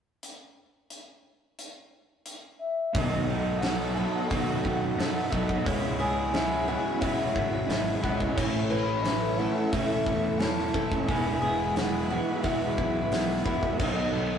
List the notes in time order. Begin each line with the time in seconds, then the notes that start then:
0.23 closed hi-hat
0.90 closed hi-hat
1.59 closed hi-hat
2.26 closed hi-hat
2.59 E5
2.92 B1 B2 D#3 F#3 B3 E5, kick, open hi-hat
2.96 A3 D#4 A4 D#5 F#5 B5
3.03 D#5
3.27 F#3 B3 D#4 A4
3.58 F#3 B3 F#5
3.62 D#4 A4, snare, open hi-hat
3.94 F#3 B3 D#4 F#4 A4 A5
4.28 B2 D#3 F#3 B3 D#4 F#4 A4 F#5, kick, open hi-hat
4.63 F#2 F#3 B3 D#4 A4, kick
4.93 F#3 F#5
4.98 F#2 B3 D#4 A4, snare, open hi-hat
5.30 B1 F#3 A3 B3 D#4 F#4 A4 D#5, kick
5.35 B2
5.49 kick
5.63 C#2 C#3 G#3 B3 C#4 E4 G#4 C#5, kick, open hi-hat
5.68 E4 G#4 C#5 B5
5.97 B3 C#4 E4 G#4
6.02 G#3
6.30 C#3 G#3 B3 C#4 E4 G#4 E5, open hi-hat
6.35 snare
6.64 C#4 E4 G#4
6.68 G#3 B3 F#4 G#5
6.98 C#3 G#3 B3 C#4 E4 F#4 G#4 E5, kick, open hi-hat
7.32 G#1 B3 C#4 E4 G#4, kick
7.37 G#3
7.65 G#1 C#3 G#3 B3 C#4 E4 E5
7.70 G#4, snare, open hi-hat
8.01 C#2 G#3 B3 C#4 E4 F#4 G#4 D#5, kick
8.05 C#3 G#3
8.20 kick
8.34 A1 A2 E3 A3 C#4 E4 A4 C#5 C#6, kick, crash
8.38 A4
8.69 A3 C#4 E4 A4 B4
9.02 E3 A3 C#4 E4 E5, open hi-hat
9.06 A4, snare
9.37 A3 C#4 E4 A4 F#5
9.71 A2 E3 A3 C#4 E4 A4 E5, kick, open hi-hat
10.06 E2 A3 C#4 E4 A4, kick
10.38 E2 E3 A3 C#4 A5, snare, open hi-hat
10.42 E4 A4
10.72 F#1 E4 A4 A5, kick
10.76 A2 E3 A3 C#4
10.92 kick
11.07 E1 E3 G#3 B3 E4 G#4 B4 G#5 B5, kick, open hi-hat
11.42 G#3 B3 E4 G#4
11.75 E3 G#3 B3 F#5, snare, open hi-hat
11.79 E4 G#4
12.10 G#3 B3 E4 F#4 G#4
12.40 E3 F#4 E5, open hi-hat
12.44 G#3 B3 E4 G#4, kick
12.78 B1 G#3 B3 E4 G#4, kick
12.82 B3
13.11 B1 E3 G#3 B3 E4, snare, open hi-hat
13.15 G#4
13.44 E1 G#3 E4 F#4 G#4 E5, kick
13.48 E3 B3
13.63 kick
13.77 B1 B2 D#3 A4 D#5 E5 F#5 B5, kick, crash
13.81 F#3 B3 D#4 A4
13.88 D#5
14.13 F#3 B3 D#4 A4